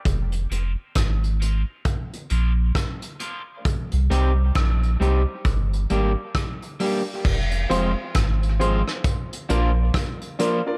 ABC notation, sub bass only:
X:1
M:4/4
L:1/16
Q:"Swing 16ths" 1/4=67
K:Fdor
V:1 name="Sub bass" clef=bass
F,,,2 F,,, z A,,,3 z3 B,,,2 z4 | z C,, C,,2 B,,,2 C,, z G,,,2 A,,, z4 z | F,,,2 F,,, z A,,,3 z3 B,,,2 z4 |]